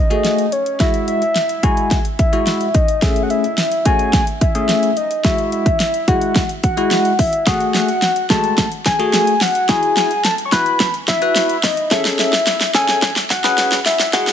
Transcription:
Already playing: soft synth lead D#5
0.10 tine electric piano A3 F#4 G#4, closed hi-hat
0.24 snare, closed hi-hat
0.38 closed hi-hat
0.52 soft synth lead C#5, closed hi-hat
0.66 closed hi-hat
0.80 tine electric piano G#3 E4 F#4, soft synth lead E5, kick, snare, closed hi-hat
0.94 closed hi-hat
1.08 soft synth lead E5, closed hi-hat
1.22 closed hi-hat
1.36 snare, closed hi-hat
1.49 closed hi-hat
1.63 tine electric piano G#3 E4 F#4, soft synth lead G#5, kick, closed hi-hat
1.77 closed hi-hat
1.91 kick, snare, closed hi-hat
2.05 closed hi-hat
2.19 soft synth lead E5, kick, closed hi-hat
2.33 tine electric piano G#3 E4 F#4, closed hi-hat
2.47 snare, closed hi-hat
2.61 closed hi-hat
2.74 soft synth lead D#5, kick, closed hi-hat
2.88 closed hi-hat
3.02 tine electric piano A3 C#4 G#4, soft synth lead E5, kick, snare, closed hi-hat
3.16 closed hi-hat
3.23 soft synth lead F#5
3.30 soft synth lead E5, closed hi-hat
3.44 closed hi-hat
3.58 snare, closed hi-hat
3.72 closed hi-hat
3.85 tine electric piano A3 C#4 F#4, soft synth lead G#5, kick, closed hi-hat
3.99 closed hi-hat
4.13 kick, snare, closed hi-hat
4.27 closed hi-hat
4.41 soft synth lead E5, kick, closed hi-hat
4.55 tine electric piano A3 C#4 G#4, closed hi-hat
4.69 snare, closed hi-hat
4.83 closed hi-hat
4.97 soft synth lead D#5, closed hi-hat
5.11 closed hi-hat
5.24 tine electric piano G#3 E4 F#4, soft synth lead E5, kick, snare, closed hi-hat
5.38 closed hi-hat
5.52 soft synth lead E5, closed hi-hat
5.66 kick, closed hi-hat
5.80 soft synth lead E5, snare, closed hi-hat
5.94 closed hi-hat
6.08 tine electric piano G#3 E4 F#4, soft synth lead F#5, kick, closed hi-hat
6.21 closed hi-hat
6.36 kick, snare, closed hi-hat
6.49 closed hi-hat
6.63 soft synth lead F#5, kick, closed hi-hat
6.77 tine electric piano G#3 E4 F#4, closed hi-hat
6.91 snare, closed hi-hat
7.05 closed hi-hat
7.19 soft synth lead E5, kick, open hi-hat
7.33 closed hi-hat
7.46 tine electric piano A3 F#4 G#4, soft synth lead F#5, kick, snare, closed hi-hat
7.60 closed hi-hat
7.74 soft synth lead F#5, snare, closed hi-hat
7.88 closed hi-hat
8.02 snare, closed hi-hat
8.16 closed hi-hat
8.30 tine electric piano G#3 A3 F#4, soft synth lead A5, kick, snare, closed hi-hat
8.44 closed hi-hat
8.58 kick, snare, closed hi-hat
8.72 closed hi-hat
8.86 soft synth lead G#5, kick, snare, closed hi-hat
8.99 tine electric piano A3 F#4 G#4, closed hi-hat
9.13 snare, closed hi-hat
9.27 closed hi-hat
9.41 soft synth lead F#5, snare, open hi-hat
9.55 closed hi-hat
9.69 tine electric piano E4 F#4 G#4, soft synth lead G#5, kick, snare, closed hi-hat
9.83 closed hi-hat
9.97 soft synth lead G#5, snare, closed hi-hat
10.11 closed hi-hat
10.25 soft synth lead A5, snare, closed hi-hat
10.38 closed hi-hat
10.45 soft synth lead C#6
10.52 tine electric piano E4 F#4 B4, soft synth lead B5, kick, snare, closed hi-hat
10.66 closed hi-hat
10.80 kick, snare, closed hi-hat
10.94 closed hi-hat
11.08 soft synth lead E5, kick, snare, closed hi-hat
11.21 tine electric piano E4 F#4 B4, closed hi-hat
11.36 snare, closed hi-hat
11.50 closed hi-hat
11.63 soft synth lead D#5, kick, snare, open hi-hat
11.77 closed hi-hat
11.91 tine electric piano C#4 G#4 A4, soft synth lead E5, kick, snare, closed hi-hat
12.05 snare, closed hi-hat
12.19 soft synth lead E5, snare, closed hi-hat
12.33 snare, closed hi-hat
12.47 snare, closed hi-hat
12.61 snare, closed hi-hat
12.74 tine electric piano C#4 G#4 A4, soft synth lead G#5, kick, snare, closed hi-hat
12.88 snare, closed hi-hat
13.02 kick, snare, closed hi-hat
13.16 snare, closed hi-hat
13.30 soft synth lead F#5, kick, snare, closed hi-hat
13.44 tine electric piano C#4 G#4 B4, snare, closed hi-hat
13.58 snare, closed hi-hat
13.72 snare, closed hi-hat
13.86 soft synth lead E5, snare, open hi-hat
13.99 snare, closed hi-hat
14.13 tine electric piano G#3 E4 F#4 G#4, soft synth lead F#5, kick, snare, closed hi-hat
14.27 snare, closed hi-hat

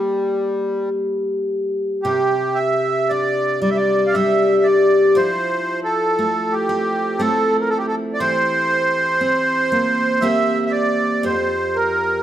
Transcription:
Already playing: accordion G3, steel-string acoustic guitar G3 A#3 G4
2.03 steel-string acoustic guitar C3 G4, accordion G4
2.55 accordion E5
3.09 steel-string acoustic guitar D4, accordion D5
3.62 steel-string acoustic guitar G3, accordion D5
3.70 accordion E5
3.76 accordion D5
4.07 accordion F5
4.13 steel-string acoustic guitar G3 D4 G4, accordion E5
4.63 accordion D5
5.15 steel-string acoustic guitar F3 E4, accordion C5
5.84 accordion A4
6.19 steel-string acoustic guitar A3
6.52 accordion G4
6.69 steel-string acoustic guitar C4
7.18 steel-string acoustic guitar A3 C4 E4, accordion A4
7.61 accordion A#4
7.70 accordion A4
7.78 accordion G4
7.88 accordion A4
8.14 accordion D5
8.20 steel-string acoustic guitar E3 G4, accordion C5
9.21 steel-string acoustic guitar C4
9.72 steel-string acoustic guitar A#3
10.21 steel-string acoustic guitar A#3 C4 G4, accordion E5
10.66 accordion E5
10.72 accordion D5
11.23 steel-string acoustic guitar F2 G4, accordion C5
11.75 accordion A#4

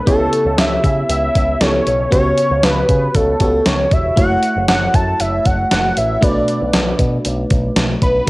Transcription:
0.06 picked electric bass C#2, fm electric piano C#3 B3 E4 G4 C#5, analog synth lead A4, kick, closed hi-hat
0.33 closed hi-hat
0.45 picked electric bass C#2
0.58 picked electric bass C#2, analog synth lead E5, snare, closed hi-hat
0.84 picked electric bass C#3, kick, closed hi-hat
1.09 picked electric bass C#2, analog synth lead E5, closed hi-hat
1.35 picked electric bass C#2, kick, closed hi-hat
1.60 picked electric bass C#2, fm electric piano B3 E4 G4 A4, analog synth lead C#5, snare, closed hi-hat
1.87 picked electric bass B1, closed hi-hat
2.11 picked electric bass C#2, fm electric piano C#3 B3 F#4 G4 C#5, analog synth lead C#5, kick, closed hi-hat
2.38 closed hi-hat
2.51 picked electric bass C#2
2.63 picked electric bass C#2, analog synth lead B4, snare, closed hi-hat
2.89 picked electric bass C#3, kick, closed hi-hat
3.15 picked electric bass C#2, analog synth lead A4, kick, closed hi-hat
3.40 picked electric bass C#2, fm electric piano B3 F#4 G4 C#5, kick, closed hi-hat
3.66 picked electric bass C#2, analog synth lead C#5, snare, closed hi-hat
3.92 picked electric bass E1, analog synth lead E5, kick, closed hi-hat
4.16 picked electric bass F#1, fm electric piano A3 E4 F#4 C#5, analog synth lead F#5, kick, closed hi-hat
4.43 closed hi-hat
4.56 picked electric bass F#1
4.68 picked electric bass F#1, analog synth lead F#5, snare, closed hi-hat
4.94 picked electric bass F#2, analog synth lead A5, kick, closed hi-hat
5.20 picked electric bass F#1, analog synth lead E5, closed hi-hat
5.45 picked electric bass F#1, analog synth lead F#5, kick, closed hi-hat
5.71 picked electric bass F#1, analog synth lead F#5, snare, closed hi-hat
5.97 picked electric bass A1, analog synth lead E5, closed hi-hat
6.21 picked electric bass B1, fm electric piano B2 A3 D4 F#4 B4, analog synth lead D5, kick, closed hi-hat
6.48 closed hi-hat
6.62 picked electric bass B1
6.74 picked electric bass B1, snare, closed hi-hat
6.99 picked electric bass B2, kick, closed hi-hat
7.25 picked electric bass B1, closed hi-hat
7.50 picked electric bass B1, kick, closed hi-hat
7.76 picked electric bass B1, snare, closed hi-hat
8.02 picked electric bass B1, analog synth lead B4, kick, closed hi-hat
8.27 fm electric piano G3

